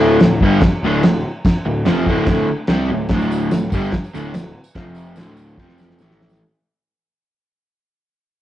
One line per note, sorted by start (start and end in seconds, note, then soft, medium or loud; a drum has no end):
0.00 0.18 D1 loud
0.00 0.20 D2 loud
0.00 0.21 A2 loud
0.00 0.21 D3 loud
0.20 0.40 D1 medium
0.20 0.38 D2 medium
0.20 0.38 A2 medium
0.20 snare loud
0.20 crash medium
0.41 0.60 G1 loud
0.41 0.62 G2 medium
0.41 0.62 D3 loud
0.41 0.63 G3 loud
0.41 kick medium
0.61 muted picked electric bass stroke soft
0.61 muted overdriven electric guitar stroke medium
0.61 kick loud
0.61 snare loud
0.61 crash medium
0.82 1.02 D1 loud
0.82 1.04 D2 medium
0.82 1.03 A2 loud
0.82 1.04 D3 medium
1.03 1.23 D1 medium
1.03 1.21 D2 medium
1.03 1.20 A2 medium
1.03 snare loud
1.03 crash medium
1.45 kick loud
1.45 snare loud
1.45 crash medium
1.66 1.85 D1 medium
1.66 1.82 D2 medium
1.66 1.82 A2 medium
1.86 2.06 F1 medium
1.86 2.06 F2 medium
1.86 2.06 C3 loud
1.86 2.07 F3 loud
1.86 snare loud
1.86 crash medium
2.06 2.45 D1 medium
2.06 2.47 D2 medium
2.06 2.48 A2 loud
2.06 2.48 D3 loud
2.06 kick medium
2.26 kick loud
2.26 snare loud
2.26 crash medium
2.48 muted picked electric bass stroke soft
2.48 muted overdriven electric guitar stroke medium
2.67 2.88 C2 medium
2.67 2.89 C3 loud
2.67 2.89 G3 loud
2.67 2.89 C4 loud
2.67 snare loud
2.67 crash medium
2.88 3.08 D1 medium
2.88 3.07 D2 medium
2.88 3.07 A2 medium
3.09 3.48 D1 loud
3.09 3.51 D2 loud
3.09 3.51 A2 loud
3.09 3.52 D3 loud
3.09 kick loud
3.09 snare loud
3.09 crash medium
3.21 tambourine soft
3.32 tambourine medium
3.50 3.70 D1 medium
3.50 3.68 D2 medium
3.50 3.68 A2 medium
3.50 snare loud
3.50 tambourine medium
3.50 crash medium
3.72 3.91 G1 loud
3.72 3.93 G2 loud
3.72 3.93 D3 loud
3.72 3.94 G3 loud
3.72 kick medium
3.72 tambourine medium
3.83 tambourine soft
3.92 muted picked electric bass stroke soft
3.92 muted overdriven electric guitar stroke medium
3.92 kick loud
3.92 snare loud
3.92 tambourine soft
3.92 crash medium
4.04 tambourine soft
4.15 4.34 D1 loud
4.15 4.34 D2 medium
4.15 4.34 A2 medium
4.15 4.35 D3 loud
4.15 tambourine medium
4.34 4.54 D1 medium
4.34 4.52 D2 medium
4.34 4.51 A2 medium
4.34 snare loud
4.34 tambourine medium
4.34 crash medium
4.64 tambourine medium
4.75 5.14 F1 loud
4.75 5.17 F2 loud
4.75 5.17 C3 loud
4.75 5.17 F3 loud
4.75 kick loud
4.75 snare loud
4.75 crash medium
4.86 tambourine soft
4.95 tambourine medium
5.16 5.55 D1 loud
5.16 5.58 D2 medium
5.16 5.58 A2 medium
5.16 5.59 D3 loud
5.16 snare loud
5.16 tambourine medium
5.16 crash medium
5.27 tambourine soft
5.37 tambourine medium
5.58 5.97 F1 loud
5.58 6.00 F2 medium
5.58 6.00 C3 loud
5.58 6.00 F3 loud
5.58 kick loud
5.58 snare medium
5.58 tambourine soft
5.69 snare medium
5.78 snare medium
5.78 tambourine medium
5.90 snare medium
5.99 6.38 A1 medium
5.99 6.41 A2 loud
5.99 6.41 E3 loud
5.99 6.42 A3 loud
5.99 snare loud
5.99 tambourine loud
6.10 snare medium
6.10 tambourine soft
6.20 snare loud
6.20 tambourine soft
6.29 snare loud
6.29 tambourine medium